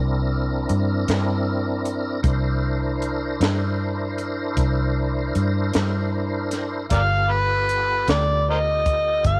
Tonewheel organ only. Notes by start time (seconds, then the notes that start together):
Already playing: C4 D4 E4 A#4
2.23 D4 E4 A#4 C5
6.91 B3 F4 G4 A4